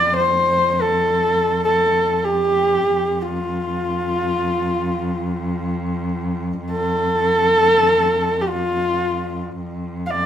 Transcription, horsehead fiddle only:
Already playing: D5
0.17 C5
0.81 A4
1.64 A4
2.24 G4
3.22 F4
6.71 A4
8.41 G4
8.48 F4
10.06 F5
10.10 D5

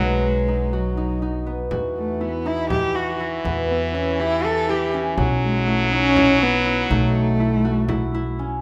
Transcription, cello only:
0.00 G#3
0.73 F#3
1.97 A3
2.22 B3
2.47 E4
2.70 G4
2.95 F#4
3.69 B3
3.94 C#4
4.20 E4
4.45 A4
4.70 G4
5.43 G#3
5.68 A3
5.93 C#4
6.43 B3
6.91 A3

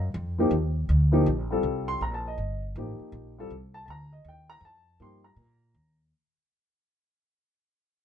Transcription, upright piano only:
0.38 F3 A#3 D#4 G4
1.12 F3 A#3 D#4 G4
1.50 G3 C4 F4 A4
1.88 C6
2.02 A#5
2.14 A5
2.28 D#5
2.77 F3 A#3 D#4 G4
3.38 G3 C4 F4 A4
3.74 A5
3.86 A5
3.90 A#5
4.13 D#5
4.28 G5
4.50 A#5
4.65 A5
5.00 F3 A#3 D#4 G4 C6
5.24 A#5

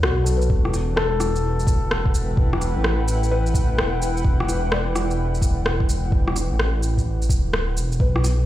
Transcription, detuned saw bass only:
0.04 B1
0.50 E1
2.76 A1
3.79 E1
4.25 E1
6.51 A1
7.30 D1
7.77 E1
8.00 B1

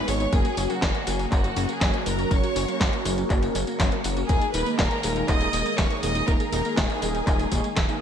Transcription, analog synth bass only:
0.08 G#1
0.33 F#1
0.58 F#1
0.82 F#1
1.07 F#1
1.32 F#1
1.57 F#1
1.81 F#1
2.06 F#1
2.31 F#1
2.56 F#1
2.81 F#1
3.05 F#1
3.30 F#1
3.55 F#1
3.80 F#1
4.05 F#1
4.29 D#1
4.54 D#1
4.79 D#1
5.04 D#1
5.29 D#1
5.53 D#1
5.78 D#1
6.03 D#1
6.28 D#1
6.53 D#1
6.77 D#1
7.02 D#1
7.27 D#1
7.52 D#1
7.77 D#1

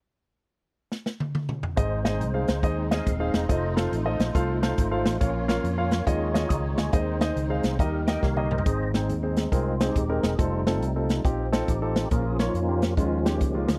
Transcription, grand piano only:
1.77 G#2 D#4 G#4 C5 D#5
2.05 D#4 G#4 C5 D#5
2.34 D#4 G#4 C5 F5
2.63 D#4 G#4 C5 D#5
2.91 D#4 G#4 C5 D#5
3.20 D#4 G#4 C5 F5
3.49 F4 A4 C5 D#5
3.76 F4 A4 C5 F5
4.06 F4 A4 C5 D#5
4.35 F4 A4 C5 F5
4.63 F4 A4 C5 F5
4.91 F4 A4 C5 F5
5.21 A#2 F4 A#4 C#5 F5
5.48 F4 A#4 C#5 F5
5.78 F4 A#4 C#5 F5
6.07 D#3 F4 G#4 C#5 D#5
6.34 F4 G#4 C#5 D#5
6.49 A#5 D#6
6.78 D#5 G#5
6.93 D#3 D#4 G#4 C5 D#5
7.21 D#4 G#4 C5 D#5
7.50 D#4 G#4 C5 F5
7.80 D#3 D#4 G4 A#4 D#5
8.08 D#4 G4 A#4 D#5
8.37 D#4 G4 A#4 D#5
8.66 G#2 C4 D#4 G#4 C5
8.94 C4 D#4 G#4 C5
9.23 C4 D#4 G#4 C5
9.52 C4 D#4 G#4 A#4
9.80 C4 D#4 G#4 C5
10.09 C4 D#4 G#4 A#4
10.39 C4 D#4 F4 A4
10.67 C4 D#4 F4 A4
10.96 C4 D#4 F4 A4
11.25 C4 D#4 F4 G4
11.52 C4 D#4 F4 A4
11.82 C4 D#4 F4 A4
12.11 A#2 A#3 C#4 F4 A#4
12.40 A#3 C#4 F4 C#5
12.69 A#3 C#4 F4 G4
12.97 D#3 G#3 C#4 D#4 F4
13.25 G#3 C#4 D#4 G4
13.54 G#3 C#4 D#4 F4

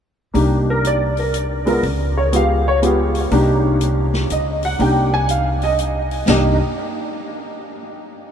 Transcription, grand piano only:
0.34 A#3 D4 D#4 G4
0.70 A#4
0.87 D5
1.19 A#4
1.66 G#3 B3 F4 A#4
2.17 C#5
2.32 G#3 B3 F4 G4 F5
2.68 C#5
2.82 G#3 B3 F4 G4
3.31 A#3 D4 D#4 G4
4.32 D#5
4.65 F#5
4.79 A#3 D4 D#4 G4 G5
5.14 G#5
5.31 F5
5.64 D#5
6.28 A#3 D4 D#4 G4 D#5

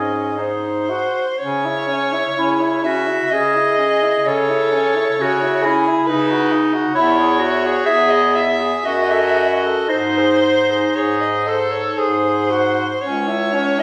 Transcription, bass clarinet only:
Already playing: G#2
1.40 C#3
2.36 C#3
3.31 C#3
4.26 C#3
5.18 C#3
6.08 C#3
6.95 E2
7.88 E2
8.85 F#2
9.89 G#2
10.96 G#2
11.99 G#2
13.03 C#2

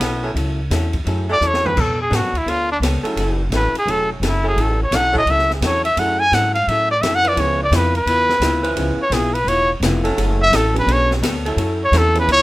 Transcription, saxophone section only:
0.23 F#3 C#4 E4 A4
1.28 F#3 C#4 E4 A4
1.64 D3 B3 C#4 B4
3.04 F#3 C#4 E4 A4
4.44 F#3 C#4 E4 A4
5.13 F#3 C#4 E4 A4
7.24 F3 C#4 E4 B4
8.62 F3 C#4 E4 B4
10.03 F#3 C#4 E4 A4
11.46 F#3 C#4 E4 A4

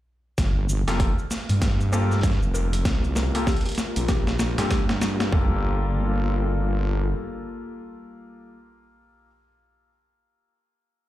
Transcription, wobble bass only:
0.38 G1
0.88 F1
1.49 G2
2.42 F1
2.85 C2
3.97 A#1
4.58 G2
5.33 G1

